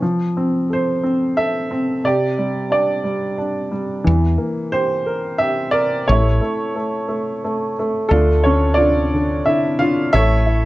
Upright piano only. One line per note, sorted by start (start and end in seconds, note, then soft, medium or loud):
0.02 2.01 F3 medium
0.37 1.02 C4 soft
0.70 1.36 A4 soft
0.70 1.41 C5 medium
1.03 1.69 C4 soft
1.37 2.03 A4 medium
1.37 2.06 E5 medium
1.71 2.03 C4 medium
2.04 4.02 C3 medium
2.04 2.72 G4 medium
2.04 2.70 D5 medium
2.38 3.02 G3 soft
2.70 3.36 D4 soft
2.70 3.70 G4 soft
2.70 3.69 D5 medium
3.04 3.70 G3 medium
3.38 4.04 D4 medium
3.71 4.05 G3 medium
4.04 6.03 E3 medium
4.38 5.70 A#3 soft
4.72 5.40 G4 soft
4.72 5.42 C5 medium
5.06 5.71 A#4 medium
5.38 6.06 G4 medium
5.38 5.74 E5 medium
5.71 6.06 A#4 medium
5.71 6.08 D5 medium
6.07 6.40 A3 medium
6.07 7.73 C#5 medium
6.12 7.75 E4 medium
6.41 6.74 A3 medium
6.75 7.07 A3 soft
7.08 7.43 A3 medium
7.44 7.78 A3 medium
7.79 8.10 A3 medium
8.09 8.42 A3 medium
8.09 8.42 D4 medium
8.09 8.42 F4 medium
8.09 8.44 A4 medium
8.13 8.44 D3 medium
8.44 8.79 D3 medium
8.44 8.76 C#4 medium
8.44 8.79 C#5 medium
8.74 9.41 D4 medium
8.74 9.41 F4 medium
8.74 9.46 D5 medium
8.80 9.12 D3 soft
9.13 9.45 D3 medium
9.46 9.77 D3 medium
9.46 9.78 E4 medium
9.46 9.80 E5 medium
9.79 10.12 D3 medium
9.79 10.12 F4 medium
9.79 10.14 F5 medium
10.13 10.65 A3 medium
10.13 10.45 E4 medium
10.13 10.65 A4 medium
10.13 10.65 C#5 medium
10.13 10.65 E5 loud
10.46 10.65 E4 medium